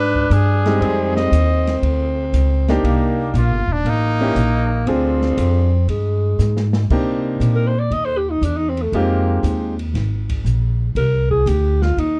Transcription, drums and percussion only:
0.15 kick
0.31 hi-hat pedal, ride
0.66 snare, ride
0.82 ride
1.17 snare
1.33 hi-hat pedal, ride
1.67 snare, ride
1.83 ride
2.34 hi-hat pedal, ride
2.68 snare, ride
2.85 ride
3.35 hi-hat pedal, ride
3.86 ride
4.36 hi-hat pedal, ride
4.87 ride
5.22 snare
5.38 hi-hat pedal, ride
5.89 ride
6.39 snare, hi-hat pedal
6.57 snare
6.73 snare
6.90 kick, crash
7.41 hi-hat pedal, ride
7.91 ride
8.43 hi-hat pedal, ride
8.77 ride
8.93 ride
9.44 hi-hat pedal, ride
9.79 ride
9.95 snare, ride
10.29 kick, ride
10.46 hi-hat pedal
10.96 ride
11.31 kick
11.47 hi-hat pedal, ride
11.82 snare
11.98 ride

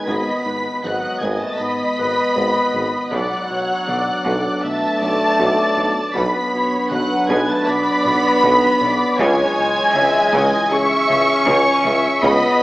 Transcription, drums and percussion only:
0.08 taiko
0.84 taiko mid
1.22 taiko
2.36 taiko
2.74 taiko mid
3.12 taiko
3.88 taiko mid
4.26 taiko
5.40 taiko
5.78 taiko mid
6.16 taiko
6.91 taiko mid
7.29 taiko
8.05 taiko low-mid
8.43 taiko mid
8.81 taiko low
9.19 taiko
9.95 taiko mid
10.33 taiko
11.47 taiko
11.85 taiko mid
12.23 taiko

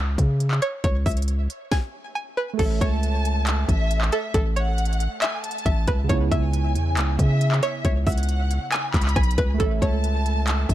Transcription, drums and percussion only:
0.18 kick, closed hi-hat
0.40 closed hi-hat
0.51 clap
0.62 closed hi-hat
0.84 kick, closed hi-hat
1.06 kick, closed hi-hat, open hi-hat
1.11 closed hi-hat
1.17 closed hi-hat
1.22 closed hi-hat
1.28 closed hi-hat
1.50 closed hi-hat
1.72 kick, snare
2.59 kick, closed hi-hat, crash
2.81 kick, closed hi-hat
3.03 closed hi-hat
3.25 closed hi-hat
3.47 clap, closed hi-hat
3.69 kick, closed hi-hat
3.91 closed hi-hat
4.01 clap
4.12 closed hi-hat
4.34 kick, closed hi-hat
4.57 closed hi-hat
4.78 closed hi-hat
4.85 closed hi-hat
4.93 closed hi-hat
5.00 closed hi-hat
5.22 clap, closed hi-hat
5.44 closed hi-hat
5.51 closed hi-hat
5.58 closed hi-hat
5.66 kick, closed hi-hat
5.88 kick, closed hi-hat
6.09 kick, closed hi-hat
6.31 kick, closed hi-hat
6.53 closed hi-hat
6.76 closed hi-hat
6.97 clap, closed hi-hat
7.19 kick, closed hi-hat
7.41 closed hi-hat
7.52 clap
7.63 closed hi-hat
7.85 kick, closed hi-hat
8.07 kick, closed hi-hat, open hi-hat
8.12 closed hi-hat
8.18 closed hi-hat
8.23 closed hi-hat
8.29 closed hi-hat
8.51 closed hi-hat
8.72 clap, closed hi-hat
8.94 kick, clap, closed hi-hat
9.02 clap, closed hi-hat
9.09 closed hi-hat
9.16 kick, cross-stick, closed hi-hat
9.23 closed hi-hat
9.31 closed hi-hat
9.38 kick, closed hi-hat
9.60 kick, closed hi-hat
9.82 kick, closed hi-hat
10.04 closed hi-hat
10.26 closed hi-hat
10.47 clap, closed hi-hat
10.69 kick, closed hi-hat

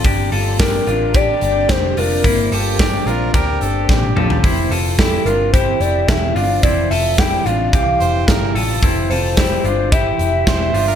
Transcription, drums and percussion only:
0.04 kick, hi-hat pedal, open hi-hat
0.32 hi-hat pedal, open hi-hat
0.59 kick, snare, hi-hat pedal, open hi-hat
0.87 hi-hat pedal, open hi-hat
1.14 kick, hi-hat pedal, open hi-hat
1.41 hi-hat pedal, open hi-hat
1.69 kick, snare, hi-hat pedal, open hi-hat
1.97 hi-hat pedal, open hi-hat
2.24 kick, hi-hat pedal, open hi-hat
2.52 hi-hat pedal, open hi-hat
2.79 kick, snare, hi-hat pedal, open hi-hat
3.07 hi-hat pedal, open hi-hat
3.34 kick, hi-hat pedal, open hi-hat
3.61 hi-hat pedal, open hi-hat
3.89 kick, snare
4.03 high tom
4.17 mid tom
4.30 floor tom
4.44 kick, hi-hat pedal, open hi-hat
4.71 hi-hat pedal, open hi-hat
4.99 kick, snare, hi-hat pedal, open hi-hat
5.26 hi-hat pedal, open hi-hat
5.54 kick, hi-hat pedal, open hi-hat
5.81 hi-hat pedal, open hi-hat
6.08 kick, snare, hi-hat pedal, open hi-hat
6.36 hi-hat pedal, open hi-hat
6.63 kick, hi-hat pedal, open hi-hat
6.91 hi-hat pedal, open hi-hat
7.18 kick, snare, hi-hat pedal, open hi-hat
7.46 hi-hat pedal, open hi-hat
7.73 kick, hi-hat pedal, open hi-hat
8.00 hi-hat pedal, open hi-hat
8.28 kick, snare, hi-hat pedal, open hi-hat
8.56 hi-hat pedal, open hi-hat
8.82 kick, hi-hat pedal, open hi-hat
9.10 hi-hat pedal, open hi-hat
9.37 kick, snare, hi-hat pedal, open hi-hat
9.65 hi-hat pedal, open hi-hat
9.92 kick, hi-hat pedal, open hi-hat
10.19 hi-hat pedal, open hi-hat
10.47 kick, snare, hi-hat pedal, open hi-hat
10.74 hi-hat pedal, open hi-hat

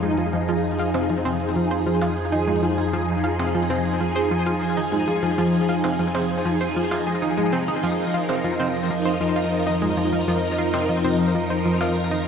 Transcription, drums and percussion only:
0.02 closed hi-hat
0.18 closed hi-hat
0.33 closed hi-hat
0.48 closed hi-hat
0.64 closed hi-hat
0.79 closed hi-hat
0.94 closed hi-hat, percussion blips
1.10 closed hi-hat
1.25 closed hi-hat
1.40 closed hi-hat
1.56 closed hi-hat
1.71 closed hi-hat
1.86 closed hi-hat
2.02 closed hi-hat, percussion blips
2.17 closed hi-hat
2.32 closed hi-hat
2.48 closed hi-hat
2.63 closed hi-hat
2.78 closed hi-hat
2.94 closed hi-hat
3.09 closed hi-hat
3.24 closed hi-hat
3.40 closed hi-hat, percussion blips
3.55 closed hi-hat
3.70 closed hi-hat
3.85 closed hi-hat
4.01 closed hi-hat
4.16 closed hi-hat
4.31 closed hi-hat
4.46 closed hi-hat
4.62 closed hi-hat
4.77 closed hi-hat
4.92 closed hi-hat
5.08 closed hi-hat
5.23 closed hi-hat
5.38 closed hi-hat
5.53 closed hi-hat
5.68 closed hi-hat
5.84 closed hi-hat, percussion blips
5.99 closed hi-hat
6.15 closed hi-hat, percussion blips
6.30 closed hi-hat
6.45 closed hi-hat
6.61 closed hi-hat
6.76 closed hi-hat
6.91 closed hi-hat, percussion blips
7.06 closed hi-hat
7.22 closed hi-hat
7.37 closed hi-hat
7.52 closed hi-hat
7.68 closed hi-hat
7.83 closed hi-hat
7.98 closed hi-hat
8.14 closed hi-hat
8.29 closed hi-hat, percussion blips
8.44 closed hi-hat
8.60 closed hi-hat
8.75 closed hi-hat
8.90 closed hi-hat
9.06 closed hi-hat
9.21 closed hi-hat
9.36 closed hi-hat
9.51 closed hi-hat
9.67 closed hi-hat
9.82 closed hi-hat
9.97 closed hi-hat
10.13 closed hi-hat
10.28 closed hi-hat
10.43 closed hi-hat
10.58 closed hi-hat
10.74 closed hi-hat, percussion blips
10.89 closed hi-hat
11.04 closed hi-hat
11.19 closed hi-hat
11.35 closed hi-hat
11.50 closed hi-hat
11.65 closed hi-hat
11.81 closed hi-hat, percussion blips
11.96 closed hi-hat
12.11 closed hi-hat

